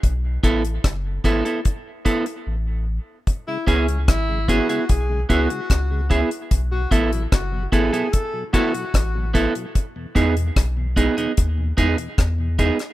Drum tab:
HH |x-xxx-xxx-xx----|x-xxx-xxx-xxx-xx|x-xxx-xxx-xxx-xx|x-xxx-xxx-xxx-xx|
SD |----r-----------|----r-------r---|----r-------r---|----r-------r--r|
BD |o-o-o-o-o-o-----|o-o-o-o-o-o-o-o-|o-o-o-o-o-o-o-o-|o-o-o-o-o-o-o-o-|